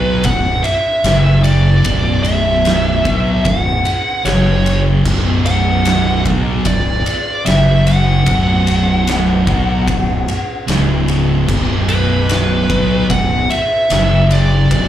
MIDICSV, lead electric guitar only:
0, 0, Header, 1, 2, 480
1, 0, Start_track
1, 0, Key_signature, 2, "minor"
1, 0, Tempo, 803213
1, 1106, Time_signature, 4, 2, 24, 8
1, 8893, End_track
2, 0, Start_track
2, 0, Title_t, "Lead electric guitar"
2, 0, Program_c, 0, 29
2, 0, Note_on_c, 0, 71, 93
2, 150, Note_on_c, 0, 78, 108
2, 171, Note_off_c, 0, 71, 0
2, 379, Note_on_c, 0, 76, 96
2, 395, Note_off_c, 0, 78, 0
2, 854, Note_off_c, 0, 76, 0
2, 857, Note_on_c, 0, 74, 108
2, 1330, Note_off_c, 0, 74, 0
2, 1333, Note_on_c, 0, 76, 97
2, 2060, Note_on_c, 0, 78, 104
2, 2079, Note_off_c, 0, 76, 0
2, 2540, Note_on_c, 0, 73, 68
2, 2555, Note_off_c, 0, 78, 0
2, 2877, Note_off_c, 0, 73, 0
2, 3263, Note_on_c, 0, 78, 115
2, 3719, Note_off_c, 0, 78, 0
2, 3984, Note_on_c, 0, 74, 94
2, 4456, Note_off_c, 0, 74, 0
2, 4458, Note_on_c, 0, 76, 84
2, 4702, Note_on_c, 0, 78, 103
2, 4708, Note_off_c, 0, 76, 0
2, 6362, Note_off_c, 0, 78, 0
2, 7105, Note_on_c, 0, 71, 91
2, 7804, Note_off_c, 0, 71, 0
2, 7832, Note_on_c, 0, 78, 100
2, 8055, Note_off_c, 0, 78, 0
2, 8070, Note_on_c, 0, 76, 107
2, 8528, Note_off_c, 0, 76, 0
2, 8560, Note_on_c, 0, 74, 105
2, 8893, Note_off_c, 0, 74, 0
2, 8893, End_track
0, 0, End_of_file